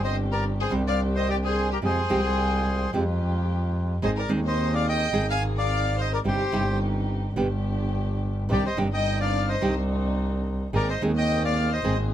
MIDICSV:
0, 0, Header, 1, 6, 480
1, 0, Start_track
1, 0, Key_signature, -3, "minor"
1, 0, Tempo, 553506
1, 1589, Time_signature, 4, 2, 24, 8
1, 4940, Tempo, 558659
1, 10473, End_track
2, 0, Start_track
2, 0, Title_t, "Bandoneon"
2, 0, Program_c, 0, 23
2, 36, Note_on_c, 0, 72, 60
2, 40, Note_on_c, 0, 75, 74
2, 141, Note_off_c, 0, 72, 0
2, 144, Note_off_c, 0, 75, 0
2, 276, Note_on_c, 0, 70, 60
2, 285, Note_on_c, 0, 74, 82
2, 382, Note_off_c, 0, 70, 0
2, 389, Note_off_c, 0, 74, 0
2, 524, Note_on_c, 0, 68, 65
2, 536, Note_on_c, 0, 72, 83
2, 629, Note_off_c, 0, 68, 0
2, 638, Note_off_c, 0, 72, 0
2, 758, Note_on_c, 0, 74, 69
2, 770, Note_on_c, 0, 77, 84
2, 864, Note_off_c, 0, 74, 0
2, 874, Note_off_c, 0, 77, 0
2, 996, Note_on_c, 0, 72, 62
2, 1011, Note_on_c, 0, 75, 78
2, 1105, Note_off_c, 0, 72, 0
2, 1119, Note_on_c, 0, 67, 70
2, 1123, Note_off_c, 0, 75, 0
2, 1132, Note_on_c, 0, 74, 88
2, 1171, Note_off_c, 0, 67, 0
2, 1181, Note_off_c, 0, 74, 0
2, 1251, Note_on_c, 0, 68, 60
2, 1267, Note_on_c, 0, 72, 79
2, 1464, Note_off_c, 0, 68, 0
2, 1472, Note_off_c, 0, 72, 0
2, 1491, Note_on_c, 0, 67, 57
2, 1503, Note_on_c, 0, 70, 70
2, 1540, Note_off_c, 0, 67, 0
2, 1549, Note_off_c, 0, 70, 0
2, 1603, Note_on_c, 0, 68, 59
2, 1615, Note_on_c, 0, 72, 83
2, 2517, Note_off_c, 0, 68, 0
2, 2522, Note_off_c, 0, 72, 0
2, 3511, Note_on_c, 0, 72, 65
2, 3511, Note_on_c, 0, 75, 83
2, 3562, Note_off_c, 0, 72, 0
2, 3562, Note_off_c, 0, 75, 0
2, 3632, Note_on_c, 0, 74, 76
2, 3635, Note_on_c, 0, 70, 57
2, 3737, Note_off_c, 0, 74, 0
2, 3739, Note_off_c, 0, 70, 0
2, 3881, Note_on_c, 0, 72, 60
2, 3882, Note_on_c, 0, 75, 77
2, 4094, Note_off_c, 0, 72, 0
2, 4116, Note_on_c, 0, 74, 66
2, 4117, Note_off_c, 0, 75, 0
2, 4120, Note_on_c, 0, 77, 85
2, 4220, Note_off_c, 0, 74, 0
2, 4222, Note_off_c, 0, 77, 0
2, 4239, Note_on_c, 0, 75, 80
2, 4241, Note_on_c, 0, 79, 98
2, 4565, Note_off_c, 0, 75, 0
2, 4566, Note_off_c, 0, 79, 0
2, 4599, Note_on_c, 0, 77, 78
2, 4607, Note_on_c, 0, 80, 100
2, 4703, Note_off_c, 0, 77, 0
2, 4709, Note_off_c, 0, 80, 0
2, 4839, Note_on_c, 0, 74, 73
2, 4848, Note_on_c, 0, 77, 91
2, 5166, Note_off_c, 0, 74, 0
2, 5205, Note_off_c, 0, 77, 0
2, 5205, Note_on_c, 0, 72, 64
2, 5209, Note_on_c, 0, 75, 77
2, 5305, Note_off_c, 0, 72, 0
2, 5307, Note_off_c, 0, 75, 0
2, 5318, Note_on_c, 0, 70, 57
2, 5325, Note_on_c, 0, 74, 76
2, 5368, Note_off_c, 0, 70, 0
2, 5373, Note_off_c, 0, 74, 0
2, 5440, Note_on_c, 0, 67, 62
2, 5442, Note_on_c, 0, 72, 71
2, 5875, Note_off_c, 0, 67, 0
2, 5876, Note_off_c, 0, 72, 0
2, 7368, Note_on_c, 0, 74, 74
2, 7371, Note_on_c, 0, 67, 58
2, 7471, Note_off_c, 0, 74, 0
2, 7472, Note_off_c, 0, 67, 0
2, 7485, Note_on_c, 0, 72, 57
2, 7494, Note_on_c, 0, 75, 74
2, 7589, Note_off_c, 0, 72, 0
2, 7596, Note_off_c, 0, 75, 0
2, 7724, Note_on_c, 0, 75, 68
2, 7728, Note_on_c, 0, 79, 81
2, 7940, Note_off_c, 0, 75, 0
2, 7943, Note_off_c, 0, 79, 0
2, 7953, Note_on_c, 0, 74, 64
2, 7965, Note_on_c, 0, 77, 78
2, 8174, Note_off_c, 0, 74, 0
2, 8197, Note_on_c, 0, 72, 56
2, 8201, Note_on_c, 0, 75, 73
2, 8204, Note_off_c, 0, 77, 0
2, 8417, Note_off_c, 0, 72, 0
2, 8419, Note_off_c, 0, 75, 0
2, 9284, Note_on_c, 0, 70, 63
2, 9291, Note_on_c, 0, 74, 83
2, 9388, Note_off_c, 0, 70, 0
2, 9403, Note_off_c, 0, 74, 0
2, 9409, Note_on_c, 0, 72, 61
2, 9412, Note_on_c, 0, 75, 77
2, 9512, Note_off_c, 0, 72, 0
2, 9515, Note_off_c, 0, 75, 0
2, 9652, Note_on_c, 0, 75, 68
2, 9653, Note_on_c, 0, 79, 91
2, 9863, Note_off_c, 0, 75, 0
2, 9864, Note_off_c, 0, 79, 0
2, 9883, Note_on_c, 0, 77, 88
2, 9885, Note_on_c, 0, 74, 69
2, 10098, Note_off_c, 0, 74, 0
2, 10120, Note_off_c, 0, 77, 0
2, 10124, Note_on_c, 0, 75, 78
2, 10126, Note_on_c, 0, 72, 58
2, 10335, Note_off_c, 0, 75, 0
2, 10336, Note_off_c, 0, 72, 0
2, 10473, End_track
3, 0, Start_track
3, 0, Title_t, "Violin section"
3, 0, Program_c, 1, 48
3, 27, Note_on_c, 1, 72, 67
3, 135, Note_off_c, 1, 72, 0
3, 279, Note_on_c, 1, 70, 63
3, 384, Note_off_c, 1, 70, 0
3, 527, Note_on_c, 1, 68, 71
3, 631, Note_off_c, 1, 68, 0
3, 761, Note_on_c, 1, 74, 77
3, 867, Note_off_c, 1, 74, 0
3, 1005, Note_on_c, 1, 72, 70
3, 1109, Note_off_c, 1, 72, 0
3, 1134, Note_on_c, 1, 67, 71
3, 1182, Note_off_c, 1, 67, 0
3, 1248, Note_on_c, 1, 68, 67
3, 1462, Note_off_c, 1, 68, 0
3, 1484, Note_on_c, 1, 67, 60
3, 1535, Note_off_c, 1, 67, 0
3, 1598, Note_on_c, 1, 68, 72
3, 2514, Note_off_c, 1, 68, 0
3, 3493, Note_on_c, 1, 72, 73
3, 3548, Note_off_c, 1, 72, 0
3, 3615, Note_on_c, 1, 70, 64
3, 3724, Note_off_c, 1, 70, 0
3, 3861, Note_on_c, 1, 72, 69
3, 4083, Note_off_c, 1, 72, 0
3, 4115, Note_on_c, 1, 74, 73
3, 4219, Note_off_c, 1, 74, 0
3, 4228, Note_on_c, 1, 75, 87
3, 4559, Note_off_c, 1, 75, 0
3, 4595, Note_on_c, 1, 77, 84
3, 4700, Note_off_c, 1, 77, 0
3, 4829, Note_on_c, 1, 74, 83
3, 5160, Note_off_c, 1, 74, 0
3, 5185, Note_on_c, 1, 72, 71
3, 5294, Note_off_c, 1, 72, 0
3, 5306, Note_on_c, 1, 70, 65
3, 5359, Note_off_c, 1, 70, 0
3, 5433, Note_on_c, 1, 67, 68
3, 5871, Note_off_c, 1, 67, 0
3, 7358, Note_on_c, 1, 67, 65
3, 7465, Note_off_c, 1, 67, 0
3, 7482, Note_on_c, 1, 72, 59
3, 7587, Note_off_c, 1, 72, 0
3, 7729, Note_on_c, 1, 75, 75
3, 7943, Note_off_c, 1, 75, 0
3, 7972, Note_on_c, 1, 74, 70
3, 8185, Note_off_c, 1, 74, 0
3, 8211, Note_on_c, 1, 72, 57
3, 8424, Note_off_c, 1, 72, 0
3, 9285, Note_on_c, 1, 70, 75
3, 9389, Note_off_c, 1, 70, 0
3, 9401, Note_on_c, 1, 72, 63
3, 9506, Note_off_c, 1, 72, 0
3, 9641, Note_on_c, 1, 75, 79
3, 9857, Note_off_c, 1, 75, 0
3, 9871, Note_on_c, 1, 74, 73
3, 10090, Note_off_c, 1, 74, 0
3, 10101, Note_on_c, 1, 72, 62
3, 10323, Note_off_c, 1, 72, 0
3, 10473, End_track
4, 0, Start_track
4, 0, Title_t, "String section"
4, 0, Program_c, 2, 48
4, 0, Note_on_c, 2, 60, 78
4, 0, Note_on_c, 2, 62, 67
4, 0, Note_on_c, 2, 67, 84
4, 586, Note_off_c, 2, 60, 0
4, 586, Note_off_c, 2, 62, 0
4, 586, Note_off_c, 2, 67, 0
4, 618, Note_on_c, 2, 62, 72
4, 619, Note_on_c, 2, 60, 79
4, 620, Note_on_c, 2, 67, 89
4, 1537, Note_off_c, 2, 60, 0
4, 1537, Note_off_c, 2, 62, 0
4, 1538, Note_off_c, 2, 67, 0
4, 1579, Note_on_c, 2, 56, 44
4, 1580, Note_on_c, 2, 65, 43
4, 1584, Note_on_c, 2, 67, 50
4, 1785, Note_off_c, 2, 56, 0
4, 1785, Note_off_c, 2, 65, 0
4, 1787, Note_off_c, 2, 67, 0
4, 1824, Note_on_c, 2, 56, 80
4, 1824, Note_on_c, 2, 65, 74
4, 1828, Note_on_c, 2, 79, 87
4, 2506, Note_off_c, 2, 56, 0
4, 2506, Note_off_c, 2, 65, 0
4, 2508, Note_off_c, 2, 79, 0
4, 2545, Note_on_c, 2, 56, 79
4, 2546, Note_on_c, 2, 65, 76
4, 2549, Note_on_c, 2, 67, 89
4, 3450, Note_off_c, 2, 56, 0
4, 3451, Note_off_c, 2, 65, 0
4, 3452, Note_off_c, 2, 67, 0
4, 3499, Note_on_c, 2, 60, 48
4, 3502, Note_on_c, 2, 63, 44
4, 3503, Note_on_c, 2, 68, 53
4, 3700, Note_off_c, 2, 60, 0
4, 3702, Note_off_c, 2, 63, 0
4, 3702, Note_off_c, 2, 68, 0
4, 3732, Note_on_c, 2, 60, 83
4, 3735, Note_on_c, 2, 63, 76
4, 3738, Note_on_c, 2, 68, 86
4, 4420, Note_off_c, 2, 60, 0
4, 4422, Note_off_c, 2, 63, 0
4, 4423, Note_off_c, 2, 68, 0
4, 4454, Note_on_c, 2, 60, 88
4, 4456, Note_on_c, 2, 63, 79
4, 4460, Note_on_c, 2, 68, 92
4, 5370, Note_off_c, 2, 60, 0
4, 5371, Note_off_c, 2, 63, 0
4, 5373, Note_off_c, 2, 68, 0
4, 5412, Note_on_c, 2, 60, 46
4, 5415, Note_on_c, 2, 67, 52
4, 5417, Note_on_c, 2, 63, 42
4, 5617, Note_off_c, 2, 60, 0
4, 5618, Note_off_c, 2, 67, 0
4, 5619, Note_off_c, 2, 63, 0
4, 5661, Note_on_c, 2, 60, 76
4, 5661, Note_on_c, 2, 67, 89
4, 5662, Note_on_c, 2, 63, 75
4, 6345, Note_off_c, 2, 60, 0
4, 6345, Note_off_c, 2, 63, 0
4, 6345, Note_off_c, 2, 67, 0
4, 6377, Note_on_c, 2, 59, 84
4, 6379, Note_on_c, 2, 62, 72
4, 6381, Note_on_c, 2, 67, 90
4, 7299, Note_off_c, 2, 59, 0
4, 7300, Note_off_c, 2, 62, 0
4, 7301, Note_off_c, 2, 67, 0
4, 7353, Note_on_c, 2, 60, 45
4, 7356, Note_on_c, 2, 62, 40
4, 7357, Note_on_c, 2, 63, 52
4, 7552, Note_off_c, 2, 60, 0
4, 7554, Note_off_c, 2, 62, 0
4, 7554, Note_off_c, 2, 63, 0
4, 7589, Note_on_c, 2, 60, 76
4, 7589, Note_on_c, 2, 62, 70
4, 7589, Note_on_c, 2, 63, 78
4, 8273, Note_off_c, 2, 60, 0
4, 8274, Note_off_c, 2, 62, 0
4, 8274, Note_off_c, 2, 63, 0
4, 8305, Note_on_c, 2, 62, 75
4, 8307, Note_on_c, 2, 60, 79
4, 8308, Note_on_c, 2, 63, 89
4, 9218, Note_off_c, 2, 62, 0
4, 9219, Note_off_c, 2, 60, 0
4, 9220, Note_off_c, 2, 63, 0
4, 9264, Note_on_c, 2, 58, 45
4, 9269, Note_on_c, 2, 60, 44
4, 9270, Note_on_c, 2, 68, 52
4, 9468, Note_off_c, 2, 58, 0
4, 9470, Note_off_c, 2, 60, 0
4, 9471, Note_off_c, 2, 68, 0
4, 9501, Note_on_c, 2, 58, 80
4, 9503, Note_on_c, 2, 60, 76
4, 9505, Note_on_c, 2, 68, 89
4, 10184, Note_off_c, 2, 58, 0
4, 10185, Note_off_c, 2, 60, 0
4, 10186, Note_off_c, 2, 68, 0
4, 10213, Note_on_c, 2, 58, 84
4, 10216, Note_on_c, 2, 60, 81
4, 10218, Note_on_c, 2, 68, 96
4, 10473, Note_off_c, 2, 58, 0
4, 10473, Note_off_c, 2, 60, 0
4, 10473, Note_off_c, 2, 68, 0
4, 10473, End_track
5, 0, Start_track
5, 0, Title_t, "Nylon-string guitar"
5, 0, Program_c, 3, 24
5, 610, Note_on_c, 3, 48, 77
5, 610, Note_on_c, 3, 55, 70
5, 614, Note_on_c, 3, 60, 72
5, 618, Note_on_c, 3, 62, 74
5, 623, Note_on_c, 3, 67, 74
5, 696, Note_off_c, 3, 48, 0
5, 697, Note_off_c, 3, 55, 0
5, 698, Note_off_c, 3, 60, 0
5, 701, Note_off_c, 3, 62, 0
5, 703, Note_off_c, 3, 67, 0
5, 1576, Note_on_c, 3, 48, 60
5, 1580, Note_on_c, 3, 53, 60
5, 1581, Note_on_c, 3, 56, 55
5, 1585, Note_on_c, 3, 60, 58
5, 1585, Note_on_c, 3, 67, 57
5, 1729, Note_off_c, 3, 48, 0
5, 1731, Note_off_c, 3, 53, 0
5, 1731, Note_off_c, 3, 56, 0
5, 1733, Note_off_c, 3, 60, 0
5, 1733, Note_off_c, 3, 67, 0
5, 1816, Note_on_c, 3, 48, 80
5, 1818, Note_on_c, 3, 56, 81
5, 1821, Note_on_c, 3, 60, 87
5, 1822, Note_on_c, 3, 53, 83
5, 1826, Note_on_c, 3, 67, 87
5, 1899, Note_off_c, 3, 48, 0
5, 1900, Note_off_c, 3, 56, 0
5, 1902, Note_off_c, 3, 53, 0
5, 1902, Note_off_c, 3, 60, 0
5, 1905, Note_off_c, 3, 67, 0
5, 2540, Note_on_c, 3, 48, 69
5, 2546, Note_on_c, 3, 53, 70
5, 2547, Note_on_c, 3, 56, 72
5, 2550, Note_on_c, 3, 60, 81
5, 2553, Note_on_c, 3, 67, 81
5, 2619, Note_off_c, 3, 48, 0
5, 2622, Note_off_c, 3, 53, 0
5, 2622, Note_off_c, 3, 56, 0
5, 2624, Note_off_c, 3, 60, 0
5, 2625, Note_off_c, 3, 67, 0
5, 3488, Note_on_c, 3, 51, 67
5, 3488, Note_on_c, 3, 56, 61
5, 3490, Note_on_c, 3, 60, 64
5, 3494, Note_on_c, 3, 63, 71
5, 3501, Note_on_c, 3, 68, 69
5, 3640, Note_off_c, 3, 51, 0
5, 3640, Note_off_c, 3, 56, 0
5, 3641, Note_off_c, 3, 60, 0
5, 3643, Note_off_c, 3, 63, 0
5, 3646, Note_off_c, 3, 68, 0
5, 3717, Note_on_c, 3, 51, 83
5, 3722, Note_on_c, 3, 56, 92
5, 3723, Note_on_c, 3, 60, 84
5, 3725, Note_on_c, 3, 63, 85
5, 3727, Note_on_c, 3, 68, 87
5, 3805, Note_off_c, 3, 51, 0
5, 3808, Note_off_c, 3, 56, 0
5, 3808, Note_off_c, 3, 60, 0
5, 3809, Note_off_c, 3, 63, 0
5, 3810, Note_off_c, 3, 68, 0
5, 4446, Note_on_c, 3, 51, 75
5, 4452, Note_on_c, 3, 56, 78
5, 4453, Note_on_c, 3, 60, 82
5, 4455, Note_on_c, 3, 63, 84
5, 4456, Note_on_c, 3, 68, 90
5, 4531, Note_off_c, 3, 51, 0
5, 4533, Note_off_c, 3, 56, 0
5, 4534, Note_off_c, 3, 60, 0
5, 4535, Note_off_c, 3, 63, 0
5, 4536, Note_off_c, 3, 68, 0
5, 5409, Note_on_c, 3, 48, 61
5, 5413, Note_on_c, 3, 60, 62
5, 5416, Note_on_c, 3, 55, 61
5, 5418, Note_on_c, 3, 67, 65
5, 5422, Note_on_c, 3, 63, 62
5, 5561, Note_off_c, 3, 48, 0
5, 5563, Note_off_c, 3, 60, 0
5, 5564, Note_off_c, 3, 55, 0
5, 5565, Note_off_c, 3, 67, 0
5, 5567, Note_off_c, 3, 63, 0
5, 5649, Note_on_c, 3, 48, 84
5, 5652, Note_on_c, 3, 55, 88
5, 5657, Note_on_c, 3, 60, 82
5, 5660, Note_on_c, 3, 63, 85
5, 5661, Note_on_c, 3, 67, 89
5, 5731, Note_off_c, 3, 48, 0
5, 5733, Note_off_c, 3, 55, 0
5, 5735, Note_off_c, 3, 60, 0
5, 5737, Note_off_c, 3, 63, 0
5, 5737, Note_off_c, 3, 67, 0
5, 6370, Note_on_c, 3, 47, 70
5, 6371, Note_on_c, 3, 50, 68
5, 6373, Note_on_c, 3, 55, 77
5, 6378, Note_on_c, 3, 59, 79
5, 6380, Note_on_c, 3, 67, 75
5, 6454, Note_off_c, 3, 47, 0
5, 6454, Note_off_c, 3, 50, 0
5, 6455, Note_off_c, 3, 55, 0
5, 6458, Note_off_c, 3, 59, 0
5, 6459, Note_off_c, 3, 67, 0
5, 7338, Note_on_c, 3, 48, 62
5, 7338, Note_on_c, 3, 51, 56
5, 7344, Note_on_c, 3, 55, 58
5, 7347, Note_on_c, 3, 62, 66
5, 7347, Note_on_c, 3, 67, 60
5, 7490, Note_off_c, 3, 48, 0
5, 7490, Note_off_c, 3, 51, 0
5, 7493, Note_off_c, 3, 55, 0
5, 7495, Note_off_c, 3, 62, 0
5, 7495, Note_off_c, 3, 67, 0
5, 7583, Note_on_c, 3, 48, 77
5, 7584, Note_on_c, 3, 55, 81
5, 7585, Note_on_c, 3, 51, 72
5, 7588, Note_on_c, 3, 62, 81
5, 7591, Note_on_c, 3, 67, 92
5, 7663, Note_off_c, 3, 48, 0
5, 7664, Note_off_c, 3, 51, 0
5, 7664, Note_off_c, 3, 55, 0
5, 7666, Note_off_c, 3, 62, 0
5, 7668, Note_off_c, 3, 67, 0
5, 8304, Note_on_c, 3, 55, 80
5, 8306, Note_on_c, 3, 48, 70
5, 8308, Note_on_c, 3, 51, 76
5, 8310, Note_on_c, 3, 62, 82
5, 8316, Note_on_c, 3, 67, 84
5, 8385, Note_off_c, 3, 48, 0
5, 8385, Note_off_c, 3, 55, 0
5, 8386, Note_off_c, 3, 51, 0
5, 8388, Note_off_c, 3, 62, 0
5, 8391, Note_off_c, 3, 67, 0
5, 9266, Note_on_c, 3, 51, 64
5, 9267, Note_on_c, 3, 56, 58
5, 9271, Note_on_c, 3, 60, 60
5, 9273, Note_on_c, 3, 68, 66
5, 9414, Note_off_c, 3, 51, 0
5, 9415, Note_off_c, 3, 56, 0
5, 9417, Note_off_c, 3, 60, 0
5, 9418, Note_off_c, 3, 68, 0
5, 9511, Note_on_c, 3, 51, 82
5, 9516, Note_on_c, 3, 56, 89
5, 9517, Note_on_c, 3, 60, 93
5, 9522, Note_on_c, 3, 68, 96
5, 9587, Note_off_c, 3, 51, 0
5, 9590, Note_off_c, 3, 56, 0
5, 9590, Note_off_c, 3, 60, 0
5, 9593, Note_off_c, 3, 68, 0
5, 10215, Note_on_c, 3, 51, 73
5, 10223, Note_on_c, 3, 56, 81
5, 10224, Note_on_c, 3, 68, 83
5, 10225, Note_on_c, 3, 60, 88
5, 10296, Note_off_c, 3, 51, 0
5, 10300, Note_off_c, 3, 56, 0
5, 10300, Note_off_c, 3, 68, 0
5, 10301, Note_off_c, 3, 60, 0
5, 10473, End_track
6, 0, Start_track
6, 0, Title_t, "Double bass"
6, 0, Program_c, 4, 43
6, 0, Note_on_c, 4, 31, 87
6, 589, Note_off_c, 4, 31, 0
6, 622, Note_on_c, 4, 36, 89
6, 1539, Note_off_c, 4, 36, 0
6, 1586, Note_on_c, 4, 41, 62
6, 1788, Note_off_c, 4, 41, 0
6, 1826, Note_on_c, 4, 36, 92
6, 2507, Note_off_c, 4, 36, 0
6, 2543, Note_on_c, 4, 41, 89
6, 3449, Note_off_c, 4, 41, 0
6, 3498, Note_on_c, 4, 32, 61
6, 3699, Note_off_c, 4, 32, 0
6, 3735, Note_on_c, 4, 39, 93
6, 4421, Note_off_c, 4, 39, 0
6, 4455, Note_on_c, 4, 32, 88
6, 5370, Note_off_c, 4, 32, 0
6, 5419, Note_on_c, 4, 31, 63
6, 5620, Note_off_c, 4, 31, 0
6, 5654, Note_on_c, 4, 31, 94
6, 6342, Note_off_c, 4, 31, 0
6, 6375, Note_on_c, 4, 31, 88
6, 7298, Note_off_c, 4, 31, 0
6, 7351, Note_on_c, 4, 36, 61
6, 7551, Note_off_c, 4, 36, 0
6, 7593, Note_on_c, 4, 31, 82
6, 8276, Note_off_c, 4, 31, 0
6, 8316, Note_on_c, 4, 36, 91
6, 9223, Note_off_c, 4, 36, 0
6, 9272, Note_on_c, 4, 32, 64
6, 9472, Note_off_c, 4, 32, 0
6, 9508, Note_on_c, 4, 39, 91
6, 10187, Note_off_c, 4, 39, 0
6, 10226, Note_on_c, 4, 32, 97
6, 10473, Note_off_c, 4, 32, 0
6, 10473, End_track
0, 0, End_of_file